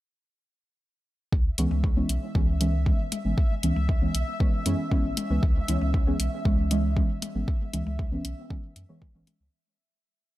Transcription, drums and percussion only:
1.32 kick
1.58 closed hi-hat
1.71 high tom
1.84 kick
2.09 closed hi-hat
2.35 kick
2.61 closed hi-hat, high tom
2.86 kick
3.12 closed hi-hat, high tom
3.38 kick
3.63 closed hi-hat
3.76 high tom
3.89 kick
4.15 closed hi-hat
4.40 kick
4.66 closed hi-hat
4.91 kick, high tom
5.17 closed hi-hat, high tom
5.43 kick
5.68 closed hi-hat
5.81 high tom
5.94 kick
6.20 closed hi-hat
6.45 kick
6.71 closed hi-hat, high tom
6.97 kick
7.22 closed hi-hat, high tom
7.48 kick
7.73 closed hi-hat
7.87 high tom
7.99 kick
8.25 closed hi-hat
8.50 kick
8.76 closed hi-hat
9.02 kick, high tom
9.27 closed hi-hat, high tom

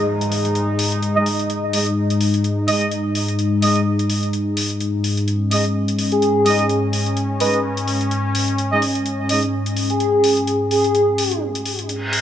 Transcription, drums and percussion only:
0.21 closed hi-hat
0.32 open hi-hat
0.45 closed hi-hat
0.55 closed hi-hat
0.79 open hi-hat
0.92 closed hi-hat
1.03 closed hi-hat
1.26 open hi-hat
1.39 closed hi-hat
1.50 closed hi-hat
1.73 open hi-hat
1.87 closed hi-hat
2.10 closed hi-hat
2.21 open hi-hat
2.34 closed hi-hat
2.44 closed hi-hat
2.68 open hi-hat
2.81 closed hi-hat
2.91 closed hi-hat
3.15 open hi-hat
3.28 closed hi-hat
3.39 closed hi-hat
3.62 open hi-hat
3.76 closed hi-hat
3.99 closed hi-hat
4.10 open hi-hat
4.23 closed hi-hat
4.33 closed hi-hat
4.57 open hi-hat
4.70 closed hi-hat
4.80 closed hi-hat
5.04 open hi-hat
5.17 closed hi-hat
5.28 closed hi-hat
5.51 open hi-hat
5.65 closed hi-hat
5.88 closed hi-hat
5.99 open hi-hat
6.12 closed hi-hat
6.22 closed hi-hat
6.46 open hi-hat
6.59 closed hi-hat
6.69 closed hi-hat
6.93 open hi-hat
7.06 closed hi-hat
7.17 closed hi-hat
7.40 open hi-hat
7.54 closed hi-hat
7.77 closed hi-hat
7.88 open hi-hat
8.01 closed hi-hat
8.11 closed hi-hat
8.35 open hi-hat
8.48 closed hi-hat
8.58 closed hi-hat
8.82 open hi-hat
8.95 closed hi-hat
9.06 closed hi-hat
9.29 open hi-hat
9.43 closed hi-hat
9.66 closed hi-hat
9.77 open hi-hat
9.90 closed hi-hat
10.00 closed hi-hat
10.24 open hi-hat
10.37 closed hi-hat
10.47 closed hi-hat
10.71 open hi-hat
10.84 closed hi-hat
10.95 closed hi-hat
11.18 open hi-hat
11.32 closed hi-hat
11.55 closed hi-hat
11.66 open hi-hat
11.79 closed hi-hat
11.89 closed hi-hat
12.13 open hi-hat

